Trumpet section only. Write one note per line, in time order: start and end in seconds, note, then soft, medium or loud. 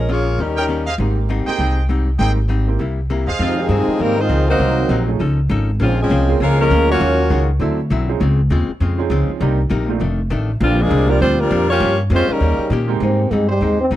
0.57 0.65 A#4 medium
0.57 0.65 C#5 medium
0.57 0.65 D#5 medium
0.57 0.65 G5 medium
0.87 0.95 G#4 medium
0.87 0.95 C5 medium
0.87 0.95 D#5 medium
0.87 0.95 F5 medium
1.47 1.87 G#4 medium
1.47 1.86 C5 medium
1.47 1.86 D#5 medium
1.47 1.86 G5 medium
2.19 2.31 G#4 medium
2.19 2.31 C5 medium
2.19 2.31 D#5 medium
2.19 2.31 G5 medium
3.27 3.67 G#4 medium
3.27 3.67 C5 medium
3.27 3.67 D#5 medium
3.27 3.67 F5 medium